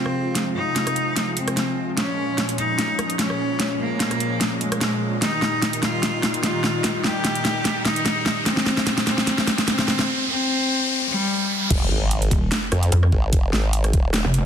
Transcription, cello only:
0.00 0.48 C4 loud
0.56 1.29 D#4 loud
1.37 1.90 C4 medium
1.97 2.51 C#4 loud
2.58 3.12 D#4 loud
3.19 3.72 C#4 loud
3.80 4.54 A#3 loud
4.61 5.14 G#3 medium
5.22 5.75 D#4 loud
5.83 6.36 F4 loud
6.43 6.97 F4 loud
7.04 7.78 G4 loud
7.85 8.39 D#4 loud
8.46 8.99 C4 loud
9.07 9.60 C4 loud
9.68 10.21 C4 loud
10.29 11.02 C4 loud
11.10 11.63 G3 loud

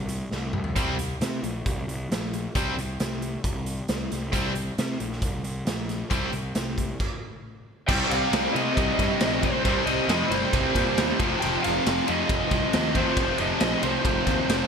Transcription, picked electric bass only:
0.00 0.23 C2 medium
0.32 0.50 C2 medium
0.54 0.72 C2 medium
0.76 1.13 C2 medium
1.21 1.39 C3 medium
1.43 1.61 A#1 medium
1.66 1.84 C2 medium
1.88 2.06 C2 medium
2.10 2.46 A#1 medium
2.55 2.73 C2 medium
2.78 2.96 C2 medium
3.00 3.36 C2 medium
3.44 3.80 C2 medium
3.89 4.07 C2 medium
4.12 4.30 C2 medium
4.33 4.69 C2 medium
4.78 4.96 C3 medium
5.00 5.18 A#1 medium
5.22 5.40 C2 medium
5.44 5.62 C2 medium
5.66 6.02 A#1 medium
6.11 6.29 C2 medium
6.33 6.51 C2 medium
6.55 6.91 C2 medium
7.89 8.02 C2 loud
8.12 8.25 C2 medium
8.33 8.47 C2 loud
8.55 8.68 C3 medium
8.77 8.90 C2 medium
8.99 9.12 G2 medium
9.21 9.48 A#1 medium
9.65 9.79 C2 loud
9.86 10.00 C2 medium
10.08 10.22 F2 medium
10.30 10.44 G1 medium
10.53 10.66 C2 medium
10.75 10.89 A#2 loud
10.98 11.11 D#2 loud
11.20 11.33 F1 medium
11.44 11.56 F1 loud
11.66 11.78 F1 loud
11.87 12.00 F1 loud
12.09 12.22 F2 medium
12.30 12.43 F1 medium
12.51 12.64 C2 loud
12.75 13.01 D#2 loud
13.17 13.30 F1 loud
13.40 13.53 F1 medium
13.61 13.74 A#1 medium
13.83 13.96 C2 medium
14.05 14.18 F1 medium
14.27 14.40 D#2 loud
14.48 14.61 F1 loud

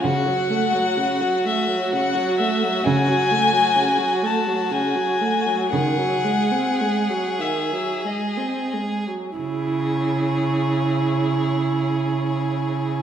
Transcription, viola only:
0.03 0.28 C#3 soft
0.27 0.52 F#3 soft
0.50 0.75 A3 soft
0.74 0.99 F#3 soft
0.97 1.22 C#3 soft
1.21 1.47 F#3 soft
1.46 1.69 A3 soft
1.67 1.94 F#3 soft
1.93 2.17 C#3 soft
2.15 2.41 F#3 soft
2.39 2.65 A3 soft
2.63 2.85 F#3 soft
2.86 3.10 C#3 soft
3.08 3.33 F#3 soft
3.31 3.54 A3 soft
3.53 3.78 F#3 soft
3.76 4.00 C#3 soft
3.99 4.24 F#3 soft
4.23 4.49 A3 soft
4.48 4.73 F#3 soft
4.71 4.98 C#3 soft
4.96 5.23 F#3 soft
5.21 5.49 A3 soft
5.47 5.72 F#3 soft
5.73 6.00 D#3 soft
5.98 6.26 F#3 soft
6.24 6.53 G#3 soft
6.52 6.82 C4 soft
6.81 7.11 G#3 soft
7.09 7.41 F#3 soft
7.39 7.74 D#3 soft
7.73 8.06 F#3 soft
8.05 8.39 G#3 soft
8.38 8.75 C4 soft
8.73 9.08 G#3 soft
9.07 9.39 F#3 soft
9.39 13.02 E4 soft

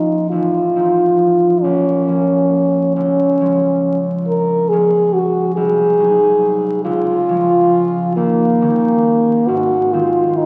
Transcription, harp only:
0.00 0.34 A#1 soft
0.00 0.75 F3 soft
0.00 0.34 C#4 soft
0.00 3.31 F4 soft
0.31 1.67 A1 soft
0.76 2.06 F3 soft
0.76 1.67 C4 soft
0.76 1.67 D#4 soft
1.64 2.99 A#1 soft
2.07 3.39 F3 soft
2.07 2.99 A#3 soft
2.07 3.40 C#4 soft
2.96 5.60 C#2 soft
3.40 4.70 F3 soft
3.40 4.71 G#3 soft
3.40 4.71 C#4 soft
4.72 5.60 F3 soft
4.72 5.99 G#3 soft
4.72 5.61 C#4 soft
5.57 6.88 C2 soft
5.99 6.88 F#3 soft
5.99 7.28 G#3 soft
5.99 6.89 D#4 soft
6.84 8.20 C#2 medium
7.29 8.20 F3 soft
7.29 8.20 G#3 soft
7.29 8.61 C#4 soft
8.17 9.52 D#2 soft
8.61 9.52 D#3 soft
8.61 9.52 G3 soft
8.61 9.52 C#4 soft
9.48 10.46 G#2 medium
9.93 10.46 D#3 soft
9.93 10.46 G#3 soft
9.93 10.46 C4 soft

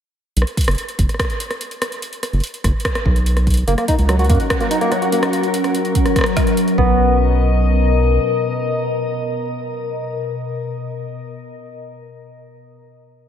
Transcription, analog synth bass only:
0.37 0.44 B1 medium
0.68 0.76 F#1 medium
0.99 1.07 F#1 medium
2.33 2.41 F#1 medium
2.64 2.72 F#1 medium
3.06 3.64 B1 medium
3.68 3.75 F#1 medium
3.99 4.31 C#2 medium
4.30 4.38 F#2 medium
6.78 8.19 B1 loud

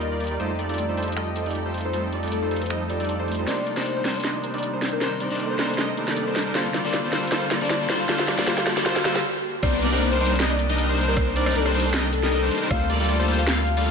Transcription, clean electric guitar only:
3.46 3.74 C3 medium
3.46 3.74 A#3 medium
3.46 3.75 D4 medium
3.46 3.75 D#4 medium
3.46 3.75 C5 medium
3.76 4.02 C3 medium
3.76 4.03 A#3 medium
3.76 4.03 D4 medium
3.76 4.03 D#4 medium
3.76 4.03 C5 medium
4.03 4.98 C3 medium
4.03 4.99 A#3 medium
4.03 4.99 D4 medium
4.03 5.00 D#4 medium
4.07 5.00 C5 loud
5.00 5.28 C3 medium
5.00 5.28 A#3 medium
5.00 5.28 D4 medium
5.00 5.29 D#4 medium
5.00 5.29 C5 medium
5.30 5.56 C3 medium
5.30 5.57 A#3 medium
5.30 5.57 D4 medium
5.30 5.57 D#4 medium
5.30 5.57 C5 loud
5.57 6.52 C3 medium
5.57 6.53 A#3 medium
5.57 6.53 D4 medium
5.57 6.54 D#4 medium
5.61 6.54 C5 loud
6.54 6.82 D3 medium
6.54 6.82 D4 medium
6.54 6.82 F4 medium
6.54 6.82 A4 medium
6.54 6.83 A#4 medium
6.54 6.83 C5 medium
6.84 7.10 D3 medium
6.84 7.10 D4 medium
6.84 7.11 F4 medium
6.84 7.11 A4 medium
6.84 7.11 A#4 medium
6.84 7.11 C5 medium
7.11 7.30 D3 medium
7.11 7.30 D4 medium
7.11 7.30 F4 medium
7.11 7.31 A#4 medium
7.11 7.32 C5 medium
7.31 7.59 D3 medium
7.31 7.59 D4 medium
7.31 7.59 F4 medium
7.31 7.59 A4 medium
7.31 7.60 A#4 medium
7.31 7.60 C5 medium
7.61 7.87 D3 medium
7.61 7.87 D4 medium
7.61 7.88 F4 medium
7.61 7.88 A4 medium
7.61 7.88 A#4 medium
7.61 7.88 C5 medium
7.88 8.07 D3 loud
7.88 8.07 D4 medium
7.88 8.07 F4 medium
7.88 8.08 A#4 medium
7.88 8.09 C5 loud
8.08 8.36 D3 medium
8.08 8.36 D4 medium
8.08 8.36 F4 medium
8.08 8.36 A4 medium
8.08 8.37 A#4 medium
8.08 8.37 C5 medium
8.37 8.45 D3 medium
8.37 8.46 D4 medium
8.37 8.46 F4 medium
8.37 8.46 A4 medium
8.37 8.46 A#4 medium
8.37 8.46 C5 medium
8.46 8.74 D3 medium
8.46 8.74 D4 medium
8.46 8.74 F4 medium
8.46 8.75 A4 medium
8.46 8.75 A#4 medium
8.46 8.75 C5 medium
8.76 8.84 D3 medium
8.76 8.84 D4 medium
8.76 8.84 F4 medium
8.76 8.84 A4 medium
8.76 8.85 A#4 medium
8.76 8.85 C5 medium
8.85 9.03 D3 medium
8.85 9.03 D4 medium
8.85 9.04 F4 medium
8.85 9.04 A4 medium
8.85 9.04 A#4 medium
8.85 9.04 C5 medium
9.04 9.22 D3 medium
9.04 9.23 D4 medium
9.04 9.23 F4 medium
9.04 9.23 A4 medium
9.04 9.23 A#4 medium
9.04 9.23 C5 medium

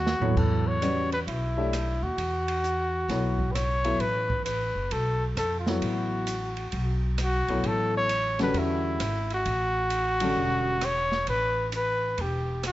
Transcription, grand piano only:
0.22 0.79 F#3 medium
0.22 0.79 B3 medium
0.22 0.79 E4 medium
0.22 0.80 A4 medium
0.22 0.80 C#5 medium
0.82 1.09 G3 medium
0.82 1.09 C#4 medium
0.82 1.09 F#4 medium
0.82 1.09 B4 medium
0.82 1.09 D5 medium
1.57 1.71 A3 medium
1.57 1.72 D4 medium
1.57 1.72 G4 medium
1.57 1.72 C#5 medium
1.57 1.72 E5 medium
3.10 3.37 F#3 medium
3.10 3.37 B3 medium
3.10 3.37 E4 medium
3.10 3.37 A4 medium
3.10 3.37 C#5 medium
3.85 3.99 F#3 medium
3.85 3.99 B3 medium
3.85 3.99 E4 medium
3.85 3.99 A4 medium
3.85 3.99 E5 medium
5.68 6.25 F#3 medium
5.68 6.25 B3 medium
5.68 6.25 E4 medium
5.68 6.25 A4 medium
5.68 6.25 C#5 medium
7.49 8.06 F#3 medium
7.49 8.07 B3 medium
7.49 8.07 E4 medium
7.49 8.07 A4 medium
7.49 8.07 C#5 medium
8.39 8.97 D3 medium
8.39 8.97 G3 medium
8.39 8.97 C#4 medium
8.39 8.98 F#4 medium
8.39 8.98 A4 medium
10.21 10.79 D3 medium
10.21 10.79 G3 medium
10.21 10.79 C#4 medium
10.21 10.79 F#4 medium
10.21 10.79 A4 medium

